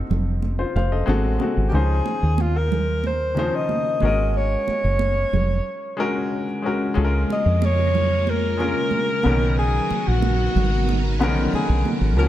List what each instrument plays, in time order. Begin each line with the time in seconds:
Already playing: grand piano F3 C4 D#4 F#4 A4 C5
0.10 fingered electric bass F1, low conga
0.42 muted conga
0.59 grand piano F4 C5
0.75 fingered electric bass F1, grand piano C5 F5, muted conga
0.92 grand piano A4 D#5
1.06 fingered electric bass G#1, grand piano G#3 C4 F#4 A4, high conga
1.25 fingered electric bass A1
1.38 grand piano G#3 C4 F#4, high conga
1.42 grand piano A4
1.57 fingered electric bass G#1
1.69 grand piano D#3 C#4, alto saxophone G4, muted conga
1.74 fingered electric bass C#2, grand piano F3 D#4 C5, alto saxophone G#4
2.06 muted conga
2.23 fingered electric bass D#2
2.38 alto saxophone F4, high conga
2.57 alto saxophone A#4
2.72 low conga
3.04 alto saxophone C5, muted conga
3.35 grand piano D#3 C#4 D#4, muted conga
3.39 grand piano F3 C5
3.55 alto saxophone D#5
3.69 high conga
4.00 fingered electric bass G#1, grand piano G#3 C#4 F#4, high conga
4.05 grand piano A#4, alto saxophone D#5
4.34 alto saxophone C#5, muted conga
4.68 muted fingered electric bass stroke, muted conga
4.84 fingered electric bass F#1
4.99 high conga
5.33 fingered electric bass F1, low conga
5.97 grand piano G#3 C#4 F#4 A#4
6.62 grand piano G#3 C#4 F#4 A#4
6.94 fingered electric bass C#2, string machine C#3 G#3 A#3 F4 A#4, grand piano G#3 C#4 F4 A4, muted conga
7.05 grand piano A#4
7.30 alto saxophone D#5, muted conga
7.46 fingered electric bass F2
7.62 alto saxophone C#5, high conga
7.95 low conga
8.27 alto saxophone A#4, muted conga
8.57 grand piano G#3 C#4 F4 A#4, muted conga
8.91 high conga
9.23 fingered electric bass B1, grand piano D3 B3 C#4 A#4, string machine F#3 B3 D#4, high conga
9.29 grand piano D#3
9.59 alto saxophone G#4
9.90 muted fingered electric bass stroke, muted conga
10.08 fingered electric bass A#1, alto saxophone F#4
10.22 high conga
10.56 fingered electric bass G#1, low conga
10.89 muted conga
11.19 fingered electric bass A#1, grand piano D3 B3 C#4 A#4, muted conga
11.26 grand piano D#3
11.53 alto saxophone G#4, muted fingered electric bass stroke, high conga
11.69 fingered electric bass B1
11.85 high conga
12.01 fingered electric bass G#1
12.17 fingered electric bass C#2, grand piano F3 A#3 C#4 F#4, string machine G#3 A#3 F4, alto saxophone A#4, muted conga